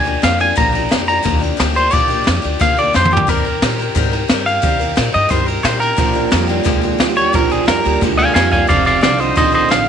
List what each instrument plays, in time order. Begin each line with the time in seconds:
Already playing: upright bass D2, clean electric guitar G#5
0.05 steel-string acoustic guitar F3 A#3 D4 G4, ride
0.22 upright bass F2, steel-string acoustic guitar F3 A#3 D4 G4, clean electric guitar F5, snare, ride
0.39 steel-string acoustic guitar F3 A#3 D4 G4, clean electric guitar G#5, ride
0.55 upright bass A#1, steel-string acoustic guitar A#2 D3 F3 A#3 D4 G4, clean electric guitar A#5, kick, ride
0.72 steel-string acoustic guitar F3 A#3 D4 G4, ride
0.89 upright bass F2, steel-string acoustic guitar F3 A#3 D4 G4, snare, ride
1.06 steel-string acoustic guitar F3 A#3 D4 G4, clean electric guitar A#5, ride
1.23 upright bass D#2, steel-string acoustic guitar A#2 D3 F3 A#3 D4 G4, kick, snare, ride
1.39 steel-string acoustic guitar F3 A#3 D4 G4
1.43 ride
1.57 upright bass D2, steel-string acoustic guitar F3 A#3 D4 G4, snare, ride
1.74 steel-string acoustic guitar F3 A#3 D4 G4, clean electric guitar C5, ride
1.91 upright bass A#1, steel-string acoustic guitar A#2 D3 F3 A#3 D4 G4, clean electric guitar D5, kick, ride
2.08 steel-string acoustic guitar F3 A#3 D4 G4, ride
2.24 upright bass F2, steel-string acoustic guitar F3 A#3 D4 G4, snare, ride
2.42 upright bass D2, steel-string acoustic guitar F3 A#3 D4 G4, ride
2.59 upright bass D2, steel-string acoustic guitar A#2 D3 F3 A#3 D4 G4, clean electric guitar F5, kick, snare, ride
2.77 steel-string acoustic guitar F3 A#3 D4 G4, clean electric guitar D5, ride
2.93 upright bass F2, steel-string acoustic guitar F3 A#3 D4 G4, clean electric guitar C5, snare
3.05 mid tom
3.11 steel-string acoustic guitar F3 A#3 D4 G4, clean electric guitar G4
3.17 floor tom
3.27 upright bass D#2, steel-string acoustic guitar D#3 G3 C4 G4 A#4, clean electric guitar A#4, kick, ride
3.45 steel-string acoustic guitar C4 G4 A#4, ride
3.62 upright bass A#2, steel-string acoustic guitar G3 C4 G4 A#4, snare, ride
3.78 steel-string acoustic guitar C4 G4 A#4, ride
3.95 upright bass G#2, steel-string acoustic guitar D#3 G3 C4 G4 A#4, kick, ride
4.12 steel-string acoustic guitar C4 G4 A#4, ride
4.28 upright bass G2, steel-string acoustic guitar G3 C4 G4 A#4, snare, ride
4.46 steel-string acoustic guitar C4 G4 A#4, clean electric guitar F5, ride
4.62 upright bass D#2, steel-string acoustic guitar D#3 G3 C4 G4 A#4, kick, ride
4.79 steel-string acoustic guitar C4 G4 A#4, ride
4.96 upright bass A#2, steel-string acoustic guitar G3 C4 G4 A#4, snare, ride
5.12 upright bass G2, steel-string acoustic guitar C4 G4 A#4, clean electric guitar D#5, ride
5.29 upright bass G2, steel-string acoustic guitar D#3 G3 C4 G4 A#4, clean electric guitar C5, kick, snare, ride
5.46 steel-string acoustic guitar C4 G4 A#4, clean electric guitar A#4, ride
5.63 upright bass A#2, steel-string acoustic guitar G3 C4 G4 A#4, clean electric guitar C5, snare, ride
5.80 steel-string acoustic guitar C4 G4 A#4, clean electric guitar A#4, ride
5.96 upright bass A#1, steel-string acoustic guitar A#2 D3 F3 A#3 D4 G4, clean electric guitar A#2 F3, kick, ride
6.13 steel-string acoustic guitar F3 A#3 D4 G4, ride
6.31 upright bass F2, clean electric guitar A#2 G3, steel-string acoustic guitar F3 A#3 D4 G4, snare, ride
6.47 clean electric guitar A#2 G3, steel-string acoustic guitar F3 A#3 D4 G4, ride
6.63 upright bass D#2, steel-string acoustic guitar A#2 D3 F3 A#3 D4 G4, clean electric guitar A#2 G#3, kick, snare, ride
6.81 steel-string acoustic guitar F3 A#3 D4 G4, ride
6.98 upright bass D2, clean electric guitar A#2 G3, steel-string acoustic guitar F3 A#3 D4 G4, snare, ride
7.16 clean electric guitar A#2 G3 C#5, steel-string acoustic guitar F3 A#3 D4 G4, ride
7.33 upright bass A#1, steel-string acoustic guitar A#2 D3 F3 A#3 D4 G4, clean electric guitar A#2 F3 A#4, kick, ride
7.50 steel-string acoustic guitar F3 A#3 D4 G4, clean electric guitar G#4, ride
7.66 upright bass F2, clean electric guitar A#2 G3 A#4, steel-string acoustic guitar F3 A#3 D4 G4, snare, ride
7.84 upright bass D2, clean electric guitar A#2 G3, steel-string acoustic guitar F3 A#3 D4 G4, ride
8.01 upright bass D2, steel-string acoustic guitar A#2 D3 F3 A#3 D4 G4, clean electric guitar A#2 G#3, kick, ride
8.17 steel-string acoustic guitar F3 A#3 D4 G4, clean electric guitar F5 G#5, ride
8.34 upright bass F2, clean electric guitar A#2 G3 F5 G#5, steel-string acoustic guitar F3 A#3 G4, snare, ride
8.51 clean electric guitar A#2 G3 F5 G#5, steel-string acoustic guitar F3 A#3 D4 G4, kick, ride
8.67 upright bass F1, clean electric guitar F2 C3 D5 F5, steel-string acoustic guitar F3 C4 D4 A4, kick, ride
8.85 steel-string acoustic guitar C4 D4 A4, clean electric guitar D5 F5, ride
9.01 upright bass C2, clean electric guitar F2 D3 D5 F5, steel-string acoustic guitar F3 C4 D4 A4, snare, ride
9.18 clean electric guitar F2 D3 C5 D#5, steel-string acoustic guitar C4 D4 A4, ride
9.36 upright bass A#1, clean electric guitar F2 D#3 C5 D#5, steel-string acoustic guitar F3 C4 D4 A4, kick, snare, ride
9.52 steel-string acoustic guitar C4 D4 A4, clean electric guitar C5 D#5, ride
9.69 upright bass A1, clean electric guitar F2 D3 F5, steel-string acoustic guitar F3 C4 D4 A4, snare, ride